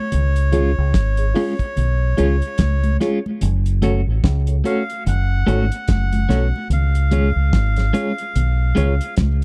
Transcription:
Already playing: melodica C#5
0.12 fingered electric bass C#2, closed hi-hat, low conga
0.36 closed hi-hat
0.52 clean electric guitar G#3 C#4 F4, reed electric piano F4 G#4 C#5, closed hi-hat, low conga
0.78 fingered electric bass C#2
0.94 fingered electric bass G#1, kick, snare, closed hi-hat
1.17 reed electric piano G#4 C#5, closed hi-hat
1.35 clean electric guitar G#3 C#4 F4, reed electric piano F4 G#4 C#5, open hi-hat
1.59 kick, closed hi-hat
1.77 fingered electric bass B1, closed hi-hat, low conga
2.17 fingered electric bass C#2, clean electric guitar G#3 C#4 F4, reed electric piano F4 G#4 C#5, closed hi-hat, low conga
2.42 closed hi-hat
2.58 fingered electric bass C#2, kick, snare, closed hi-hat, high conga
2.83 closed hi-hat, high conga
3.00 clean electric guitar G#3 C#4 F4, reed electric piano F4 G#4 C#5, snare, closed hi-hat
3.26 high conga
3.41 fingered electric bass F#1, closed hi-hat, low conga
3.66 closed hi-hat
3.82 clean electric guitar A3 C#4 F#4, reed electric piano F#4 A4 C#5, closed hi-hat, low conga
4.07 fingered electric bass A1
4.24 fingered electric bass C#2, kick, snare, closed hi-hat
4.47 reed electric piano A4 C#5, closed hi-hat
4.64 clean electric guitar A3 C#4 F#4, reed electric piano F#4 A4 C#5, melodica F5, closed hi-hat
4.90 closed hi-hat
5.06 fingered electric bass F#1, melodica F#5, closed hi-hat, low conga
5.46 fingered electric bass G#1, clean electric guitar A3 C#4 F#4, reed electric piano F#4 A4 C#5, closed hi-hat, low conga
5.72 closed hi-hat
5.88 fingered electric bass F#1, melodica F#5, kick, snare, closed hi-hat, high conga
6.13 closed hi-hat, high conga
6.29 fingered electric bass B1, clean electric guitar A3 C#4 F#4, reed electric piano F#4 A4 C#5, snare, closed hi-hat
6.56 high conga
6.70 fingered electric bass C#2, melodica F5, closed hi-hat, low conga
6.95 closed hi-hat
7.11 clean electric guitar G#3 C#4 F4, reed electric piano F4 G#4 C#5, closed hi-hat, low conga
7.36 fingered electric bass C#2
7.53 fingered electric bass G#1, kick, snare, closed hi-hat
7.76 reed electric piano G#4 C#5, snare, closed hi-hat
7.93 clean electric guitar G#3 C#4 F4, reed electric piano F4 G#4 C#5, closed hi-hat
8.18 closed hi-hat
8.36 fingered electric bass B1, closed hi-hat, low conga
8.75 fingered electric bass C#2, clean electric guitar G#3 C#4 F4, reed electric piano F4 G#4 C#5, closed hi-hat, low conga
9.01 closed hi-hat
9.17 fingered electric bass C#2, kick, snare, closed hi-hat, high conga

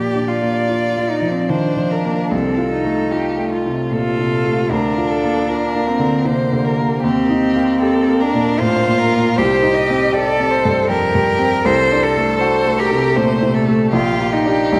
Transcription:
Already playing: grand piano A#2, cello G4, violin D5
0.15 grand piano D4
0.28 cello F4
0.42 grand piano A#3
0.69 grand piano F4
0.97 grand piano A#3
1.09 cello D#4
1.22 grand piano F3
1.31 cello C4
1.49 grand piano D#3, cello D4, violin C5
1.77 grand piano F3
1.91 violin A#4
2.05 grand piano A#3
2.31 grand piano C2, cello C4, violin A4
2.58 grand piano F4
2.72 cello D#4
2.84 grand piano A3
3.11 grand piano F4, violin G4
3.38 grand piano A3
3.52 violin F4
3.66 grand piano C3
3.91 grand piano A#2, cello F4, violin A4
4.19 grand piano C3
4.45 grand piano A3
4.70 grand piano D2, cello D4, violin A#4
4.97 grand piano F4
5.10 violin A4
5.24 grand piano A#3
5.48 grand piano F4, violin A#4
5.75 grand piano A#3
5.88 cello C4
5.99 grand piano D3
6.25 grand piano C3, cello A#3, violin C5
6.53 grand piano D3
6.64 violin A#4
6.79 grand piano A#3
7.03 grand piano D#2, cello C4, violin G4
7.29 grand piano D#4
7.56 grand piano A#3
7.81 grand piano G4, violin A4
8.08 grand piano A#3
8.20 cello D4, violin A#4
8.34 grand piano A#2
8.59 grand piano A2, cello F4, violin C5
8.87 grand piano A#2
8.98 violin A#4
9.14 grand piano A#3
9.36 grand piano C2, cello G4, violin C5
9.62 grand piano D#4
9.74 violin D#5
9.90 grand piano C4
10.12 grand piano G4, cello A4, violin D5
10.40 grand piano C4
10.51 violin C5
10.65 grand piano G2
10.88 grand piano F2, violin G4, cello A#4
11.15 grand piano G2
11.39 grand piano C4
11.63 grand piano C2, violin A4, cello C5
11.91 grand piano D4
12.03 cello A4
12.17 grand piano A3
12.39 grand piano F#4, violin C5
12.66 grand piano A3
12.78 cello G4, violin A#4
12.91 grand piano C3
13.16 grand piano A#2, cello A3, violin C5
13.42 grand piano C3
13.54 violin A4
13.67 grand piano A3
13.92 grand piano A#1, cello F4, violin G4
14.20 grand piano A#3
14.32 cello D#4
14.45 grand piano D4 G4
14.72 grand piano C2

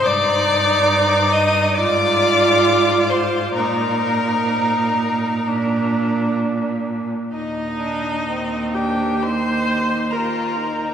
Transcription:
0.04 cello G2, viola D#4, violin D5 D6
1.32 violin D#5 D#6
1.75 cello G#2, viola F4, violin D5 D6
3.09 violin C5 C6
3.53 cello A#2, viola D#4, violin A#4 A#5
5.47 cello A#2, viola D4
7.32 cello D#2, viola D#4, violin D#4 D#5
7.80 violin D4
8.29 violin C4
8.74 violin D4 G5, viola G4
9.23 violin D#4 C6, viola C5
10.11 violin F4 A#5, viola A#4
10.56 violin D#4

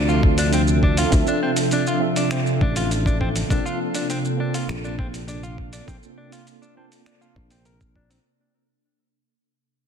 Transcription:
Already playing: fretless electric bass D2, ambient pad C3 F3 D4 A4, tine electric piano C4 D4 F4 A4 E5
0.09 clean electric guitar F4, shaker
0.23 kick
0.38 clean electric guitar D4, open hi-hat, shaker
0.53 clean electric guitar C4, open hi-hat, shaker
0.68 shaker
0.83 clean electric guitar D4, kick
0.97 clean electric guitar F4, open hi-hat, shaker
1.10 fretless electric bass D2, tine electric piano C4 D4 F4 A4 E5, kick, open hi-hat, shaker
1.27 clean electric guitar D4, shaker
1.43 clean electric guitar C4
1.56 open hi-hat, shaker
1.71 clean electric guitar D4, open hi-hat, shaker
1.87 clean electric guitar F4, shaker
2.00 tine electric piano C4 D4 F4 A4 E5
2.16 clean electric guitar D4, open hi-hat, shaker
2.31 clean electric guitar C4, finger snap, open hi-hat, shaker
2.47 shaker
2.61 fretless electric bass A1, clean electric guitar D4, kick
2.76 clean electric guitar F4, open hi-hat, shaker
2.91 open hi-hat, shaker
3.06 clean electric guitar D4, kick, shaker
3.21 clean electric guitar C4, kick
3.36 open hi-hat, shaker
3.47 fretless electric bass A#1, tine electric piano A#3 C4 D4 F4 A4, ambient pad A#3, clean electric guitar D4, kick, open hi-hat, shaker
3.66 clean electric guitar F4, shaker
3.95 clean electric guitar D4, open hi-hat, shaker
4.10 clean electric guitar C4, open hi-hat, shaker
4.25 shaker
4.37 tine electric piano A#3 C4 D4 F4 A4, clean electric guitar D4
4.54 clean electric guitar F4, open hi-hat, shaker
4.69 fretless electric bass A#1, finger snap, open hi-hat, shaker
4.84 clean electric guitar D4, shaker
4.99 clean electric guitar C4, kick
5.14 open hi-hat, shaker
5.28 clean electric guitar D4, open hi-hat, shaker
5.43 clean electric guitar F4, shaker
5.58 kick
5.73 clean electric guitar D4, open hi-hat, shaker
5.86 fretless electric bass A#1, tine electric piano A#3 C4 D4 F4 A4, clean electric guitar C4, kick, open hi-hat, shaker
6.03 shaker
6.18 clean electric guitar D4
6.32 clean electric guitar F4, open hi-hat, shaker
6.47 open hi-hat, shaker
6.62 clean electric guitar D4, shaker
6.75 tine electric piano A#3 C4 D4 F4 A5, clean electric guitar C4
6.92 open hi-hat, shaker
7.06 clean electric guitar D4, finger snap, open hi-hat, shaker
7.21 clean electric guitar F4, shaker
7.36 fretless electric bass A#1, kick
7.51 clean electric guitar C4, open hi-hat, shaker
7.65 clean electric guitar A#4, open hi-hat, shaker
7.81 kick, shaker
7.96 clean electric guitar D4, kick
8.10 clean electric guitar C4, open hi-hat, shaker

